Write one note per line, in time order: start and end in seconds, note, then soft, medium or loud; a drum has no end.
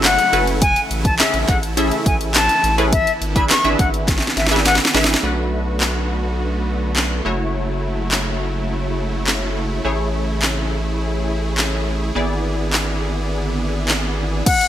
0.00 0.18 F#1 loud
0.00 2.89 C#3 medium
0.00 0.59 F#3 medium
0.00 2.89 A3 medium
0.00 0.19 C#4 medium
0.00 0.19 E4 medium
0.00 5.19 E4 loud
0.00 0.19 F#4 medium
0.00 0.19 A4 medium
0.00 0.19 E5 medium
0.00 closed hi-hat medium
0.04 0.45 F#5 medium
0.04 snare loud
0.04 clap loud
0.04 clap medium
0.18 closed hi-hat medium
0.33 0.76 F#1 loud
0.33 0.62 C#4 medium
0.33 0.62 E4 medium
0.33 0.62 F#4 medium
0.33 0.62 A4 medium
0.33 0.62 B4 medium
0.33 closed hi-hat medium
0.47 closed hi-hat medium
0.62 5.19 E3 medium
0.62 0.81 G#5 loud
0.62 kick loud
0.62 closed hi-hat loud
0.76 closed hi-hat medium
0.91 1.23 A1 medium
0.91 closed hi-hat medium
1.05 1.15 A5 medium
1.05 kick loud
1.05 closed hi-hat medium
1.19 1.59 C#4 medium
1.19 1.59 E4 medium
1.19 1.59 G#4 medium
1.19 1.59 A4 medium
1.19 1.39 E5 medium
1.19 1.59 E5 medium
1.19 snare loud
1.19 clap medium
1.19 clap loud
1.19 closed hi-hat medium
1.34 1.45 A1 loud
1.34 closed hi-hat medium
1.48 1.91 A1 medium
1.48 1.58 F#5 medium
1.48 kick loud
1.48 clap medium
1.48 closed hi-hat medium
1.63 closed hi-hat medium
1.77 2.45 C#4 medium
1.77 2.46 E4 medium
1.77 2.46 G#4 medium
1.77 2.46 A4 medium
1.77 2.46 E5 medium
1.77 closed hi-hat loud
1.91 closed hi-hat medium
2.06 2.49 A1 loud
2.06 2.16 G#5 medium
2.06 kick loud
2.06 closed hi-hat medium
2.21 closed hi-hat medium
2.35 2.76 A5 medium
2.35 snare loud
2.35 clap loud
2.35 clap medium
2.35 closed hi-hat medium
2.49 closed hi-hat medium
2.64 3.07 A1 medium
2.64 closed hi-hat medium
2.78 2.92 C#4 medium
2.78 2.92 E4 medium
2.78 2.92 G#4 medium
2.78 2.92 A4 medium
2.78 2.92 B4 medium
2.78 closed hi-hat medium
2.93 5.21 D3 medium
2.93 5.21 B3 medium
2.93 3.12 E5 loud
2.93 kick loud
2.93 closed hi-hat loud
3.07 closed hi-hat medium
3.21 3.54 G#1 medium
3.21 closed hi-hat medium
3.36 3.55 D4 medium
3.36 3.55 E4 medium
3.36 3.55 G#4 medium
3.36 3.55 B4 medium
3.36 3.55 E5 medium
3.36 3.45 B5 medium
3.36 kick loud
3.36 closed hi-hat medium
3.50 3.69 C#6 medium
3.50 snare loud
3.50 clap medium
3.50 clap loud
3.50 closed hi-hat medium
3.64 3.75 G#1 loud
3.64 4.23 D4 medium
3.64 4.23 E4 medium
3.64 4.23 G#4 medium
3.64 4.23 B4 medium
3.64 4.23 E5 medium
3.64 closed hi-hat medium
3.79 4.22 G#1 medium
3.79 3.89 F#5 medium
3.79 kick loud
3.79 closed hi-hat medium
3.94 closed hi-hat medium
4.08 kick medium
4.08 snare medium
4.08 closed hi-hat medium
4.18 snare medium
4.22 closed hi-hat medium
4.27 snare medium
4.37 4.80 G#1 loud
4.37 4.46 E5 medium
4.37 snare medium
4.37 closed hi-hat medium
4.46 snare medium
4.51 4.80 D4 medium
4.51 4.80 E4 medium
4.51 4.81 G#4 medium
4.51 4.81 B4 medium
4.51 4.81 E5 medium
4.51 closed hi-hat medium
4.56 snare medium
4.66 4.75 F#5 loud
4.66 snare medium
4.66 clap medium
4.66 closed hi-hat medium
4.75 snare medium
4.80 closed hi-hat medium
4.85 snare loud
4.94 5.16 G#1 medium
4.94 5.22 D4 medium
4.94 5.23 E4 medium
4.94 5.23 G#4 medium
4.94 5.23 B4 medium
4.94 5.04 E5 medium
4.94 5.23 E5 medium
4.94 snare medium
4.94 open hi-hat medium
5.04 snare loud
5.09 closed hi-hat medium
5.14 snare loud
5.23 7.21 B1 medium
5.23 7.23 D3 medium
5.23 7.21 A3 medium
5.23 12.12 A3 medium
5.23 7.23 B3 medium
5.23 7.21 D4 medium
5.23 7.23 F#4 medium
5.23 7.21 F#4 medium
5.23 7.22 B4 medium
5.81 snare medium
5.81 clap loud
6.96 snare medium
6.96 clap loud
7.25 9.81 F#1 medium
7.25 12.12 C#3 medium
7.25 9.82 F#3 medium
7.25 9.81 A3 medium
7.25 9.81 E4 medium
7.25 14.43 E4 medium
7.25 9.81 F#4 medium
7.25 9.81 C#5 medium
8.12 snare medium
8.12 clap loud
9.27 snare medium
9.27 clap loud
9.84 12.12 A1 medium
9.84 12.11 A3 medium
9.84 12.12 E4 medium
9.84 14.42 G#4 medium
9.84 12.12 G#4 medium
9.84 12.12 C#5 medium
10.42 snare medium
10.42 clap loud
11.58 snare medium
11.58 clap loud
12.15 14.42 G#1 medium
12.15 14.44 D3 medium
12.15 14.42 B3 medium
12.15 14.44 B3 medium
12.15 14.42 E4 medium
12.15 14.43 G#4 medium
12.15 14.43 D5 medium
12.73 snare medium
12.73 clap loud
13.89 snare medium
13.89 clap loud
14.46 14.68 D3 medium
14.46 14.68 A3 medium
14.46 14.68 B3 medium
14.46 14.68 F#4 medium
14.46 14.65 F#5 loud
14.46 kick loud
14.46 closed hi-hat loud
14.46 crash loud
14.61 closed hi-hat medium